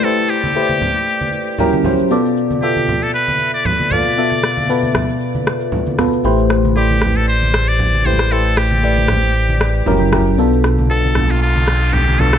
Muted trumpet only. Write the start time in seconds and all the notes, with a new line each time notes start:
0.04 A4
0.30 G4
2.63 G4
3.03 A4
3.14 B4
3.54 D5
3.66 B4
3.92 D5
6.76 G4
7.16 A4
7.28 C5
7.68 D5
8.06 C5
8.32 A4
8.58 G4
10.91 A4
11.31 F4
11.42 F4
11.94 G4
12.20 A4